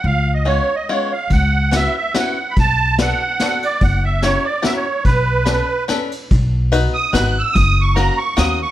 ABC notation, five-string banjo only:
X:1
M:3/4
L:1/8
Q:"Swing" 1/4=144
K:Bm
V:1 name="Five-string banjo"
z2 [^G,B,C^E] z [G,B,CE] z | z2 [B,CEF] z [B,CEF] z | z2 [B,DFA] z [B,DFA] z | z2 [CEF^A] z [CEFA] z |
z2 [CDAB] z [CDAB] z | [K:B] z2 [B,DFB] z [B,DFB] z | z2 [A,CFA] z [A,CFA] z |]